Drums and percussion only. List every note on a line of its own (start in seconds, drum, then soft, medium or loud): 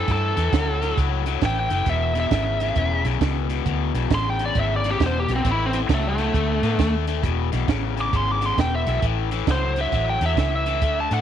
0.08 kick medium
0.08 snare soft
0.08 closed hi-hat medium
0.37 snare soft
0.37 closed hi-hat medium
0.53 kick medium
0.53 snare loud
0.53 closed hi-hat medium
0.82 snare soft
0.82 closed hi-hat medium
0.97 kick medium
0.97 snare soft
0.97 closed hi-hat medium
1.26 snare soft
1.26 closed hi-hat medium
1.41 kick medium
1.41 snare loud
1.41 closed hi-hat medium
1.70 snare soft
1.70 closed hi-hat medium
1.86 kick medium
1.86 snare soft
1.86 closed hi-hat medium
2.15 snare soft
2.15 closed hi-hat medium
2.31 kick medium
2.31 snare loud
2.31 closed hi-hat medium
2.60 snare soft
2.60 closed hi-hat medium
2.76 kick medium
2.76 closed hi-hat medium
3.05 snare soft
3.05 closed hi-hat medium
3.21 kick medium
3.21 snare loud
3.21 closed hi-hat medium
3.50 snare soft
3.50 closed hi-hat medium
3.66 kick medium
3.66 closed hi-hat medium
3.95 snare soft
3.95 closed hi-hat medium
4.10 kick medium
4.10 snare loud
4.10 closed hi-hat medium
4.39 snare soft
4.39 closed hi-hat medium
4.55 kick medium
4.55 closed hi-hat medium
4.84 snare soft
4.84 closed hi-hat medium
5.00 kick medium
5.00 snare loud
5.00 closed hi-hat medium
5.29 snare soft
5.29 closed hi-hat medium
5.45 kick medium
5.45 closed hi-hat medium
5.73 snare soft
5.73 closed hi-hat medium
5.89 kick medium
5.89 snare loud
5.89 closed hi-hat medium
6.18 snare soft
6.18 closed hi-hat medium
6.34 kick medium
6.34 closed hi-hat medium
6.63 snare soft
6.63 closed hi-hat medium
6.79 kick medium
6.79 snare medium
6.79 closed hi-hat medium
7.07 snare soft
7.07 closed hi-hat medium
7.23 kick medium
7.23 closed hi-hat medium
7.52 snare soft
7.52 closed hi-hat medium
7.68 kick medium
7.68 snare loud
7.68 closed hi-hat medium
7.97 snare soft
7.97 closed hi-hat medium
8.13 kick medium
8.13 closed hi-hat medium
8.42 snare soft
8.42 closed hi-hat medium
8.58 kick medium
8.58 snare loud
8.58 closed hi-hat medium
8.87 snare soft
8.87 closed hi-hat medium
9.02 kick medium
9.02 closed hi-hat medium
9.31 snare soft
9.31 closed hi-hat medium
9.47 kick medium
9.47 snare loud
9.47 closed hi-hat medium
9.76 snare soft
9.76 closed hi-hat medium
9.92 kick medium
9.92 snare soft
9.92 closed hi-hat medium
10.21 snare soft
10.21 closed hi-hat medium
10.37 kick medium
10.37 snare medium
10.37 closed hi-hat medium
10.66 snare soft
10.66 closed hi-hat medium
10.82 kick medium
10.82 closed hi-hat medium
11.11 snare soft
11.11 closed hi-hat medium